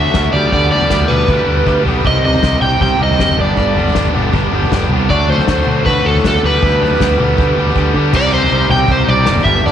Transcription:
Already playing: fingered electric bass D2, overdriven electric guitar D3 F#3 A3 E5
0.00 overdriven electric guitar D4 F#4
0.05 floor tom
0.14 fingered electric bass D2, overdriven electric guitar D3 F#3 A3 D4 F#4, kick, snare
0.24 floor tom
0.33 fingered electric bass D2, overdriven electric guitar D3 G3 B3 G4 D5, floor tom
0.52 fingered electric bass D2, overdriven electric guitar D3 G3 B3 G4 D5, kick, floor tom
0.71 overdriven electric guitar D3 G3 B3 G4 D5, floor tom
0.81 floor tom
0.89 fingered electric bass D2, overdriven electric guitar D3 G3 B3 G4, kick, snare
1.00 floor tom
1.08 fingered electric bass D2, overdriven electric guitar D3 G3 B3 G4 B4, mid tom
1.28 fingered electric bass D2, overdriven electric guitar D3 G3 B3 G4, kick, floor tom
1.46 fingered electric bass D2, overdriven electric guitar D3 G3 B3 G4
1.57 floor tom
1.66 fingered electric bass D2, overdriven electric guitar D3 G3 B3 G4, kick
1.83 fingered electric bass B1, floor tom
1.87 overdriven electric guitar D3 G3 B3 G4
2.04 fingered electric bass C2, overdriven electric guitar C3 G3 C4 D#4 G4 D#5, kick, floor tom
2.24 overdriven electric guitar C3 G3 C4 D#4 G4 D#5, floor tom
2.34 floor tom
2.42 fingered electric bass C2, overdriven electric guitar C3 G3 C4 D#4 G4, kick, snare
2.52 floor tom
2.61 fingered electric bass C2, overdriven electric guitar C3 G3 G5, mid tom
2.65 overdriven electric guitar C4 D#4 G4
2.80 fingered electric bass C2, overdriven electric guitar C3 G3 C4 D#4 G4 G5, kick, floor tom
2.99 fingered electric bass C2, overdriven electric guitar C3 G3 C4 D#4 G4
3.03 overdriven electric guitar D#5
3.10 floor tom
3.19 fingered electric bass F#1, overdriven electric guitar C3 G3 C4 D#4 G4 D#5, kick, snare
3.29 floor tom
3.37 fingered electric bass G1, overdriven electric guitar G2 D3 G3 B3 D4 G4 D5, floor tom
3.56 fingered electric bass G1, overdriven electric guitar G2 D3 G3 B3 D4 G4, kick, floor tom
3.74 overdriven electric guitar G2 D3 G3 B3 D4 G4, floor tom
3.86 floor tom
3.93 fingered electric bass G1, overdriven electric guitar G2 D3 G3 B3 D4 G4, kick, snare
4.05 floor tom
4.12 fingered electric bass G1, overdriven electric guitar G2 D3 G3 B3 D4 G4, mid tom
4.31 fingered electric bass G1, overdriven electric guitar G2 D3 G3 B3 D4 G4, kick, floor tom
4.51 fingered electric bass G1, overdriven electric guitar G2 D3 G3 B3 D4 G4
4.62 floor tom
4.71 fingered electric bass G1, overdriven electric guitar G2 D3 G3 B3 D4 G4, kick, snare
4.81 floor tom
4.89 fingered electric bass C2, overdriven electric guitar G2 D3 G3 B3 D4, floor tom
4.93 overdriven electric guitar G4
5.09 fingered electric bass D2, overdriven electric guitar D3 F#3 A3 D4 F#4 D5, kick, floor tom
5.28 overdriven electric guitar D3 F#3 A3 D4 F#4 C5, floor tom
5.38 floor tom
5.47 fingered electric bass D2, overdriven electric guitar D3 F#3 A3 D4 F#4, kick, snare
5.58 floor tom
5.67 fingered electric bass D2, overdriven electric guitar D3 F#3 A3 D4 F#4, mid tom
5.86 fingered electric bass D2, overdriven electric guitar D3 F#3 A3 D4 F#4 B4, kick, floor tom
6.05 fingered electric bass D2, overdriven electric guitar D3 F#3 A3 D4 F#4 A4
6.15 floor tom
6.24 fingered electric bass D2, overdriven electric guitar D3 F#3 A3 D4 F#4, kick, snare
6.28 overdriven electric guitar A4
6.34 floor tom
6.43 fingered electric bass D2, overdriven electric guitar D3 G3 B3 G4 B4, floor tom
6.61 fingered electric bass D2, overdriven electric guitar D3 G3 B3 G4, kick, floor tom
6.80 overdriven electric guitar D3 G3 B3 G4, floor tom
6.91 floor tom
7.00 fingered electric bass D2, overdriven electric guitar D3 G3 B3 G4, kick, snare
7.10 floor tom
7.19 fingered electric bass D2, overdriven electric guitar D3 G3 B3 G4, mid tom
7.37 fingered electric bass D2, overdriven electric guitar D3 G3 B3 G4, kick, floor tom
7.57 fingered electric bass D2, overdriven electric guitar D3 G3 B3 G4
7.67 floor tom
7.75 fingered electric bass D2, overdriven electric guitar D3 G3 B3 G4, kick
7.94 fingered electric bass D3, overdriven electric guitar D3 G3 B3 G4, kick
8.13 fingered electric bass C2, overdriven electric guitar C3 G3 C4 D#4 G4 D5, kick, floor tom, crash
8.32 overdriven electric guitar C3 G3 C4 D#4 G4 C5
8.41 floor tom
8.51 fingered electric bass C2, overdriven electric guitar C3 G3 C4 D#4 G4
8.69 fingered electric bass C2, overdriven electric guitar C3 G3 C4 D#4 G4 G5, floor tom, mid tom
8.88 fingered electric bass C2, overdriven electric guitar C3 G3 C4 D#4 G4 C5, kick, floor tom
9.07 fingered electric bass C2, overdriven electric guitar C3 G3 C4 D#4 G4 D5, mid tom
9.25 fingered electric bass F#1, overdriven electric guitar C3 G3 C4 D#4 G4, snare
9.36 floor tom
9.44 fingered electric bass G1, overdriven electric guitar G2 D3 G3 B3 D4 G4 E5, kick, floor tom
9.63 fingered electric bass G1, overdriven electric guitar G2 D3 G3 B3 D4 G4 D5, floor tom

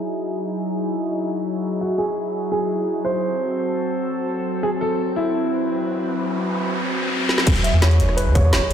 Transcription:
Already playing: analog synth pad F#3 D#4 E4 G#4
1.81 grand piano F#4
1.98 grand piano G#4
2.52 grand piano G#4
3.05 grand piano C5
3.24 analog synth pad C4 A4
4.63 grand piano G#4, riser
4.81 grand piano A4
5.16 grand piano E4
5.35 analog synth pad B4
7.29 snare
7.38 snare
7.47 sub bass E1, analog synth pad F#3 D#4 G#4, kick, closed hi-hat, crash
7.56 closed hi-hat
7.63 grand piano E5, closed hi-hat
7.73 sub bass E2
7.81 grand piano C#5, snare, closed hi-hat
7.91 closed hi-hat
8.00 sub bass E1, closed hi-hat
8.09 cross-stick
8.16 grand piano B4, closed hi-hat
8.26 sub bass E2
8.34 grand piano C#5, kick, closed hi-hat
8.53 sub bass E1, snare, closed hi-hat

